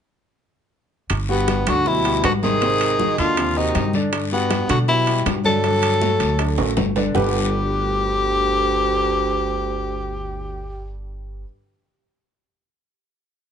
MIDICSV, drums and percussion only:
0, 0, Header, 1, 2, 480
1, 0, Start_track
1, 0, Key_signature, 1, "major"
1, 0, Tempo, 378310
1, 1396, Time_signature, 4, 2, 24, 8
1, 17141, End_track
2, 0, Start_track
2, 0, Title_t, "Drums"
2, 1393, Note_on_c, 9, 65, 88
2, 1398, Note_on_c, 9, 60, 61
2, 1401, Note_on_c, 9, 63, 30
2, 1401, Note_on_c, 9, 74, 71
2, 1520, Note_off_c, 9, 65, 0
2, 1525, Note_off_c, 9, 60, 0
2, 1528, Note_off_c, 9, 63, 0
2, 1528, Note_off_c, 9, 74, 0
2, 1639, Note_on_c, 9, 63, 36
2, 1766, Note_off_c, 9, 63, 0
2, 1876, Note_on_c, 9, 65, 65
2, 1877, Note_on_c, 9, 60, 60
2, 1877, Note_on_c, 9, 63, 84
2, 1878, Note_on_c, 9, 73, 64
2, 2003, Note_off_c, 9, 65, 0
2, 2004, Note_off_c, 9, 60, 0
2, 2004, Note_off_c, 9, 63, 0
2, 2005, Note_off_c, 9, 73, 0
2, 2115, Note_on_c, 9, 63, 93
2, 2117, Note_on_c, 9, 65, 89
2, 2120, Note_on_c, 9, 73, 68
2, 2121, Note_on_c, 9, 60, 29
2, 2242, Note_off_c, 9, 63, 0
2, 2244, Note_off_c, 9, 65, 0
2, 2247, Note_off_c, 9, 73, 0
2, 2248, Note_off_c, 9, 60, 0
2, 2358, Note_on_c, 9, 74, 71
2, 2359, Note_on_c, 9, 63, 29
2, 2360, Note_on_c, 9, 60, 64
2, 2485, Note_off_c, 9, 74, 0
2, 2486, Note_off_c, 9, 63, 0
2, 2487, Note_off_c, 9, 60, 0
2, 2598, Note_on_c, 9, 60, 31
2, 2602, Note_on_c, 9, 65, 71
2, 2604, Note_on_c, 9, 63, 32
2, 2724, Note_off_c, 9, 60, 0
2, 2729, Note_off_c, 9, 65, 0
2, 2730, Note_off_c, 9, 63, 0
2, 2838, Note_on_c, 9, 65, 94
2, 2838, Note_on_c, 9, 66, 75
2, 2838, Note_on_c, 9, 73, 71
2, 2840, Note_on_c, 9, 60, 62
2, 2840, Note_on_c, 9, 61, 81
2, 2843, Note_on_c, 9, 63, 89
2, 2965, Note_off_c, 9, 65, 0
2, 2965, Note_off_c, 9, 66, 0
2, 2965, Note_off_c, 9, 73, 0
2, 2967, Note_off_c, 9, 60, 0
2, 2967, Note_off_c, 9, 61, 0
2, 2970, Note_off_c, 9, 63, 0
2, 3080, Note_on_c, 9, 60, 30
2, 3081, Note_on_c, 9, 73, 80
2, 3082, Note_on_c, 9, 63, 85
2, 3206, Note_off_c, 9, 60, 0
2, 3208, Note_off_c, 9, 73, 0
2, 3209, Note_off_c, 9, 63, 0
2, 3318, Note_on_c, 9, 74, 77
2, 3321, Note_on_c, 9, 65, 57
2, 3323, Note_on_c, 9, 60, 70
2, 3324, Note_on_c, 9, 63, 33
2, 3445, Note_off_c, 9, 74, 0
2, 3448, Note_off_c, 9, 65, 0
2, 3450, Note_off_c, 9, 60, 0
2, 3451, Note_off_c, 9, 63, 0
2, 3564, Note_on_c, 9, 65, 77
2, 3565, Note_on_c, 9, 63, 35
2, 3691, Note_off_c, 9, 63, 0
2, 3691, Note_off_c, 9, 65, 0
2, 3797, Note_on_c, 9, 73, 58
2, 3799, Note_on_c, 9, 63, 97
2, 3800, Note_on_c, 9, 60, 59
2, 3924, Note_off_c, 9, 73, 0
2, 3926, Note_off_c, 9, 63, 0
2, 3927, Note_off_c, 9, 60, 0
2, 4036, Note_on_c, 9, 73, 76
2, 4039, Note_on_c, 9, 60, 33
2, 4040, Note_on_c, 9, 65, 63
2, 4163, Note_off_c, 9, 73, 0
2, 4166, Note_off_c, 9, 60, 0
2, 4167, Note_off_c, 9, 65, 0
2, 4278, Note_on_c, 9, 74, 71
2, 4280, Note_on_c, 9, 60, 58
2, 4280, Note_on_c, 9, 63, 28
2, 4281, Note_on_c, 9, 65, 89
2, 4405, Note_off_c, 9, 74, 0
2, 4407, Note_off_c, 9, 60, 0
2, 4407, Note_off_c, 9, 63, 0
2, 4407, Note_off_c, 9, 65, 0
2, 4517, Note_on_c, 9, 63, 34
2, 4644, Note_off_c, 9, 63, 0
2, 4755, Note_on_c, 9, 63, 81
2, 4757, Note_on_c, 9, 60, 65
2, 4757, Note_on_c, 9, 61, 85
2, 4761, Note_on_c, 9, 65, 71
2, 4761, Note_on_c, 9, 73, 65
2, 4882, Note_off_c, 9, 63, 0
2, 4884, Note_off_c, 9, 60, 0
2, 4884, Note_off_c, 9, 61, 0
2, 4887, Note_off_c, 9, 73, 0
2, 4888, Note_off_c, 9, 65, 0
2, 4991, Note_on_c, 9, 63, 81
2, 4995, Note_on_c, 9, 60, 32
2, 5000, Note_on_c, 9, 73, 73
2, 5118, Note_off_c, 9, 63, 0
2, 5121, Note_off_c, 9, 60, 0
2, 5127, Note_off_c, 9, 73, 0
2, 5235, Note_on_c, 9, 63, 31
2, 5236, Note_on_c, 9, 65, 88
2, 5237, Note_on_c, 9, 60, 65
2, 5241, Note_on_c, 9, 74, 75
2, 5362, Note_off_c, 9, 63, 0
2, 5362, Note_off_c, 9, 65, 0
2, 5364, Note_off_c, 9, 60, 0
2, 5368, Note_off_c, 9, 74, 0
2, 5478, Note_on_c, 9, 63, 34
2, 5604, Note_off_c, 9, 63, 0
2, 5715, Note_on_c, 9, 63, 99
2, 5717, Note_on_c, 9, 60, 59
2, 5717, Note_on_c, 9, 65, 74
2, 5722, Note_on_c, 9, 73, 64
2, 5842, Note_off_c, 9, 63, 0
2, 5844, Note_off_c, 9, 60, 0
2, 5844, Note_off_c, 9, 65, 0
2, 5849, Note_off_c, 9, 73, 0
2, 5955, Note_on_c, 9, 63, 92
2, 5957, Note_on_c, 9, 73, 69
2, 5961, Note_on_c, 9, 65, 86
2, 6081, Note_off_c, 9, 63, 0
2, 6084, Note_off_c, 9, 73, 0
2, 6087, Note_off_c, 9, 65, 0
2, 6193, Note_on_c, 9, 74, 69
2, 6196, Note_on_c, 9, 63, 29
2, 6200, Note_on_c, 9, 60, 58
2, 6320, Note_off_c, 9, 74, 0
2, 6323, Note_off_c, 9, 63, 0
2, 6327, Note_off_c, 9, 60, 0
2, 6435, Note_on_c, 9, 65, 70
2, 6436, Note_on_c, 9, 63, 36
2, 6438, Note_on_c, 9, 60, 36
2, 6562, Note_off_c, 9, 65, 0
2, 6563, Note_off_c, 9, 63, 0
2, 6565, Note_off_c, 9, 60, 0
2, 6672, Note_on_c, 9, 63, 80
2, 6677, Note_on_c, 9, 65, 98
2, 6677, Note_on_c, 9, 66, 69
2, 6678, Note_on_c, 9, 73, 66
2, 6680, Note_on_c, 9, 60, 70
2, 6680, Note_on_c, 9, 61, 83
2, 6799, Note_off_c, 9, 63, 0
2, 6804, Note_off_c, 9, 65, 0
2, 6804, Note_off_c, 9, 66, 0
2, 6805, Note_off_c, 9, 73, 0
2, 6807, Note_off_c, 9, 60, 0
2, 6807, Note_off_c, 9, 61, 0
2, 6907, Note_on_c, 9, 63, 84
2, 6915, Note_on_c, 9, 73, 83
2, 6916, Note_on_c, 9, 60, 32
2, 7034, Note_off_c, 9, 63, 0
2, 7042, Note_off_c, 9, 73, 0
2, 7043, Note_off_c, 9, 60, 0
2, 7148, Note_on_c, 9, 63, 34
2, 7152, Note_on_c, 9, 74, 74
2, 7153, Note_on_c, 9, 60, 68
2, 7154, Note_on_c, 9, 65, 65
2, 7275, Note_off_c, 9, 63, 0
2, 7279, Note_off_c, 9, 74, 0
2, 7280, Note_off_c, 9, 60, 0
2, 7281, Note_off_c, 9, 65, 0
2, 7394, Note_on_c, 9, 65, 96
2, 7521, Note_off_c, 9, 65, 0
2, 7631, Note_on_c, 9, 63, 85
2, 7632, Note_on_c, 9, 60, 58
2, 7632, Note_on_c, 9, 73, 71
2, 7757, Note_off_c, 9, 63, 0
2, 7759, Note_off_c, 9, 60, 0
2, 7759, Note_off_c, 9, 73, 0
2, 7867, Note_on_c, 9, 65, 69
2, 7870, Note_on_c, 9, 60, 32
2, 7874, Note_on_c, 9, 73, 70
2, 7994, Note_off_c, 9, 65, 0
2, 7996, Note_off_c, 9, 60, 0
2, 8000, Note_off_c, 9, 73, 0
2, 8106, Note_on_c, 9, 65, 78
2, 8111, Note_on_c, 9, 60, 66
2, 8112, Note_on_c, 9, 63, 30
2, 8115, Note_on_c, 9, 74, 76
2, 8233, Note_off_c, 9, 65, 0
2, 8238, Note_off_c, 9, 60, 0
2, 8239, Note_off_c, 9, 63, 0
2, 8242, Note_off_c, 9, 74, 0
2, 8347, Note_on_c, 9, 65, 94
2, 8351, Note_on_c, 9, 63, 35
2, 8474, Note_off_c, 9, 65, 0
2, 8478, Note_off_c, 9, 63, 0
2, 8586, Note_on_c, 9, 66, 78
2, 8589, Note_on_c, 9, 60, 66
2, 8589, Note_on_c, 9, 61, 86
2, 8592, Note_on_c, 9, 73, 68
2, 8595, Note_on_c, 9, 63, 82
2, 8713, Note_off_c, 9, 66, 0
2, 8716, Note_off_c, 9, 60, 0
2, 8716, Note_off_c, 9, 61, 0
2, 8718, Note_off_c, 9, 73, 0
2, 8722, Note_off_c, 9, 63, 0
2, 8828, Note_on_c, 9, 60, 31
2, 8829, Note_on_c, 9, 66, 86
2, 8831, Note_on_c, 9, 73, 84
2, 8837, Note_on_c, 9, 63, 83
2, 8955, Note_off_c, 9, 60, 0
2, 8956, Note_off_c, 9, 66, 0
2, 8958, Note_off_c, 9, 73, 0
2, 8964, Note_off_c, 9, 63, 0
2, 9068, Note_on_c, 9, 61, 96
2, 9068, Note_on_c, 9, 66, 85
2, 9069, Note_on_c, 9, 74, 98
2, 9078, Note_on_c, 9, 64, 97
2, 9194, Note_off_c, 9, 66, 0
2, 9195, Note_off_c, 9, 61, 0
2, 9196, Note_off_c, 9, 74, 0
2, 9205, Note_off_c, 9, 64, 0
2, 17141, End_track
0, 0, End_of_file